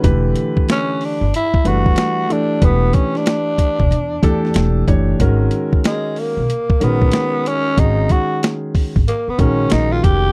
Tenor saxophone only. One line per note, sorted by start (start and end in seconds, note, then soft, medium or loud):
0.72 1.06 C#4 loud
1.05 1.35 D4 medium
1.36 1.69 E4 loud
1.67 2.34 F#4 loud
2.32 2.67 D4 loud
2.65 2.96 B3 medium
2.95 3.18 C#4 medium
3.17 4.89 D4 medium
5.86 6.21 G#3 medium
6.19 6.85 A#3 medium
6.83 7.50 B3 medium
7.48 7.81 C#4 loud
7.79 8.13 D#4 loud
8.11 8.43 F#4 medium
9.08 9.31 A#3 medium
9.30 9.41 B3 medium
9.40 9.73 C#4 medium
9.72 9.94 D#4 loud
9.92 10.05 F4 medium
10.04 10.32 G4 loud